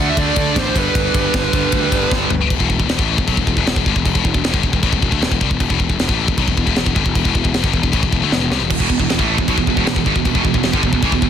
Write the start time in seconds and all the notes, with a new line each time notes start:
Already playing: D2 D3 A3 D4
0.10 E5
0.17 D2 D3 A3 D4 D5, kick, ride
0.36 D3, kick, ride
0.56 A1 C5, kick, snare, ride
0.75 G1 G2 D3 G3 B4, kick, ride
0.95 G1, kick, ride
1.14 G1, kick, ride
1.34 G1, kick, snare, ride
1.53 G1 G2 D3 G3, kick, ride
1.72 D2, kick, ride
1.92 G1, kick, ride
2.11 G1, kick, snare
2.30 G1, floor tom
2.50 E1 E2 B2, kick, crash
2.59 E1 E2 B2, kick
2.70 E1 E2 B2, kick
2.79 E1 E2 B2, kick
2.88 E1 E2 B2, snare, crash
2.98 A1 A2 E3 A3, kick
3.18 E1 E2 B2, kick
3.27 B1 B2 F#3, kick, crash
3.37 E1 E2 B2, kick
3.47 E1 E2 B2, kick
3.57 E1 E2 B2, kick
3.66 E1 E2 B2, snare, crash
3.76 E1 E2 B2, kick
3.86 G1 G2 D3, kick
3.96 E1 E2 B2, kick
4.05 E1 E2 B2, kick, crash
4.15 E1 E2 B2, kick
4.24 E1 E2 B2, kick
4.34 E1 E2 B2, kick
4.44 E1 E2 B2, snare, crash
4.53 G1 G2 D3, kick
4.63 E1 E2 B2, kick
4.73 E1 E2 B2, kick
4.83 A1 A2 E3, kick, crash
4.92 E1 E2 B2, kick
5.02 E1 E2 B2, kick
5.11 D2 D3 A3, kick
5.22 E1 E2 B2, snare, crash
5.32 E1 E2 B2, kick
5.41 C2 C3 G3, kick
5.51 E1 E2 B2, kick
5.60 E1 E2 B2, kick, crash
5.70 E1 E2 B2, kick
5.79 E1 E2 B2, kick
5.89 E1 E2 B2, kick
5.99 E1 E2 B2, snare, crash
6.09 A1 A2 E3 A3, kick
6.28 E1 E2 B2, kick
6.37 B1 B2 F#3, kick, crash
6.48 E1 E2 B2, kick
6.57 E1 E2 B2, kick
6.66 E1 E2 B2, kick
6.76 E1 E2 B2, snare, crash
6.86 E1 E2 B2, kick
6.95 G1 G2 D3, kick
7.06 E1 E2 B2, kick
7.15 E1 E2 B2, kick, crash
7.24 E1 E2 B2, kick
7.35 E1 E2 B2, kick
7.44 E1 E2 B2, kick
7.54 E1 E2 B2, snare, crash
7.63 G1 G2 D3, kick
7.73 E1 E2 B2, kick
7.83 E1 E2 B2, kick
7.92 A1 A2 E3, kick, crash
8.02 E1 E2 B2, kick
8.12 E1 E2 B2, kick
8.22 D2 D3 A3
8.32 E1 E2 B2, snare
8.41 E1 E2 B2
8.51 C2 C3 G3, snare
8.61 E1 E2 B2
8.70 E1 E2 B2, kick, crash
8.80 E1 E2 B2, kick
8.89 E1 E2 B2, kick
8.99 E1 E2 B2, kick
9.10 E1 E2 B2, snare, crash
9.19 A1 A2 E3 A3, kick
9.38 E1 E2 B2, kick
9.48 B1 B2 F#3, kick, crash
9.57 E1 E2 B2, kick
9.67 E1 E2 B2, kick
9.77 E1 E2 B2, kick
9.87 E1 E2 B2, snare, crash
9.96 E1 E2 B2, kick
10.06 G1 G2 D3, kick
10.16 E1 E2 B2, kick
10.25 E1 E2 B2, kick, crash
10.35 E1 E2 B2, kick
10.44 E1 E2 B2, kick
10.54 E1 E2 B2, kick
10.63 E1 E2 B2, snare, crash
10.73 G1 G2 D3, kick
10.83 E1 E2 B2, kick
10.93 E1 E2 B2, kick
11.02 A1 A2 E3, kick, crash
11.12 E1 E2 B2, kick
11.22 E1 E2 B2, kick